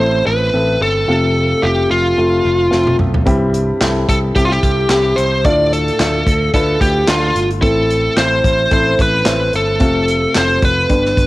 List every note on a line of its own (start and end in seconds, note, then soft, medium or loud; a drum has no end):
0.00 0.21 A1 medium
0.00 1.10 A2 medium
0.00 1.10 E3 medium
0.00 0.53 A3 medium
0.00 0.53 C4 medium
0.00 0.54 E4 medium
0.00 0.54 A4 medium
0.00 0.26 C5 medium
0.27 0.49 A1 medium
0.27 0.82 B4 medium
0.53 0.76 A1 medium
0.53 1.00 A3 medium
0.53 1.00 C4 medium
0.53 1.00 E4 medium
0.53 1.01 A4 medium
0.81 1.03 G1 medium
0.81 1.66 A4 medium
1.07 1.53 F1 medium
1.07 1.86 C3 medium
1.07 1.54 A3 medium
1.07 1.55 C4 medium
1.07 1.55 F4 medium
1.07 1.55 A4 medium
1.62 1.86 F1 medium
1.62 2.09 A3 medium
1.62 2.09 C4 medium
1.62 2.09 F4 medium
1.62 2.09 G4 medium
1.62 1.91 G4 medium
1.90 2.13 F1 medium
1.90 2.96 F4 medium
2.17 2.40 F1 medium
2.17 2.64 A3 medium
2.17 2.64 C4 medium
2.17 2.64 F4 medium
2.17 2.64 A4 medium
2.45 2.67 F1 medium
2.71 2.94 F1 medium
2.71 3.18 A3 medium
2.71 3.18 C4 medium
2.71 3.18 F4 medium
2.71 3.18 A4 medium
2.71 snare soft
2.87 high tom medium
2.99 3.22 B1 medium
2.99 mid tom medium
3.14 floor tom medium
3.25 3.71 C2 medium
3.25 4.04 G2 medium
3.25 3.72 G3 loud
3.25 3.73 C4 medium
3.25 3.73 E4 medium
3.25 3.73 G4 loud
3.25 kick medium
3.25 closed hi-hat medium
3.54 closed hi-hat medium
3.80 4.04 C2 medium
3.80 4.27 G3 medium
3.80 4.28 C4 medium
3.80 4.27 E4 medium
3.80 4.28 A4 medium
3.80 snare medium
3.80 clap medium
3.80 closed hi-hat medium
4.08 4.31 C2 medium
4.08 4.17 A4 medium
4.08 kick medium
4.08 closed hi-hat medium
4.35 4.58 C2 medium
4.35 4.82 G3 medium
4.35 4.82 C4 medium
4.35 4.82 E4 medium
4.35 4.44 G4 medium
4.35 4.83 G4 medium
4.35 kick medium
4.35 closed hi-hat medium
4.45 4.52 F4 medium
4.51 5.20 G4 medium
4.51 snare soft
4.63 4.85 C2 medium
4.63 kick medium
4.63 closed hi-hat medium
4.89 5.13 C2 medium
4.89 5.36 G3 medium
4.89 5.37 C4 medium
4.89 5.37 E4 medium
4.89 5.37 G4 medium
4.89 snare medium
4.89 clap medium
4.89 closed hi-hat medium
5.16 5.45 C2 medium
5.16 5.45 C5 medium
5.16 closed hi-hat medium
5.45 5.90 D2 medium
5.45 6.23 A2 medium
5.45 5.91 A3 medium
5.45 5.91 D4 medium
5.45 5.92 F4 medium
5.45 5.92 A4 medium
5.45 5.71 D5 medium
5.45 kick medium
5.45 closed hi-hat medium
5.73 6.50 A4 medium
5.73 closed hi-hat medium
5.88 closed hi-hat soft
5.99 6.22 D2 medium
5.99 6.46 A3 medium
5.99 6.46 D4 medium
5.99 6.46 F4 medium
5.99 6.46 A4 medium
5.99 snare medium
5.99 clap medium
5.99 closed hi-hat medium
6.27 6.49 D2 medium
6.27 kick medium
6.27 closed hi-hat medium
6.54 6.76 D2 medium
6.54 7.00 A3 medium
6.54 7.00 D4 medium
6.54 7.01 F4 medium
6.54 6.80 A4 medium
6.54 7.01 B4 medium
6.54 kick medium
6.54 closed hi-hat medium
6.81 7.03 D2 medium
6.81 7.09 G4 medium
6.81 kick medium
6.81 closed hi-hat medium
7.07 7.31 D2 medium
7.07 7.54 A3 medium
7.07 7.55 D4 medium
7.07 7.55 F4 medium
7.07 7.48 F4 medium
7.07 7.55 A4 medium
7.07 snare medium
7.07 clap medium
7.07 closed hi-hat medium
7.36 7.63 G1 medium
7.36 closed hi-hat medium
7.51 closed hi-hat soft
7.62 8.08 A1 loud
7.62 8.40 A2 medium
7.62 8.41 E3 medium
7.62 8.09 A3 medium
7.62 8.09 C4 medium
7.62 8.09 E4 medium
7.62 8.18 A4 medium
7.62 8.09 A4 medium
7.62 kick medium
7.62 closed hi-hat medium
7.91 closed hi-hat medium
8.17 8.40 A1 medium
8.17 8.64 A3 medium
8.17 8.64 C4 medium
8.17 8.64 E4 medium
8.17 8.64 C5 medium
8.17 8.72 C5 medium
8.17 snare medium
8.17 clap medium
8.17 closed hi-hat medium
8.44 8.67 A1 medium
8.44 kick medium
8.44 closed hi-hat medium
8.71 8.94 A1 medium
8.71 9.18 A3 medium
8.71 9.18 C4 medium
8.71 9.18 E4 medium
8.71 9.18 A4 medium
8.71 9.01 C5 medium
8.71 kick medium
8.71 closed hi-hat medium
8.99 9.22 A1 medium
8.99 9.51 B4 medium
8.99 kick medium
8.99 closed hi-hat medium
9.25 9.49 A1 medium
9.25 9.72 A3 medium
9.25 9.73 C4 medium
9.25 9.72 E4 medium
9.25 9.73 C5 medium
9.25 snare medium
9.25 clap medium
9.25 closed hi-hat medium
9.53 9.81 G1 medium
9.53 10.37 A4 medium
9.53 closed hi-hat medium
9.79 10.26 F1 medium
9.79 10.58 C3 medium
9.79 10.26 A3 medium
9.79 10.27 C4 medium
9.79 10.27 F4 medium
9.79 10.27 A4 medium
9.79 kick medium
9.79 closed hi-hat medium
10.08 closed hi-hat medium
10.35 10.58 F1 medium
10.35 10.82 A3 medium
10.35 10.82 C4 medium
10.35 10.82 F4 medium
10.35 10.82 A4 medium
10.35 10.62 C5 medium
10.35 snare medium
10.35 clap medium
10.35 closed hi-hat medium
10.62 10.85 F1 medium
10.62 11.27 B4 medium
10.62 kick medium
10.62 closed hi-hat medium
10.89 11.13 G1 medium
10.89 11.27 G2 medium
10.89 11.27 D3 soft
10.89 11.27 B3 medium
10.89 11.27 D4 medium
10.89 11.27 G4 medium
10.89 11.27 B4 medium
10.89 kick medium
10.89 closed hi-hat medium
11.06 snare soft
11.17 11.27 G1 medium
11.17 kick medium
11.17 closed hi-hat medium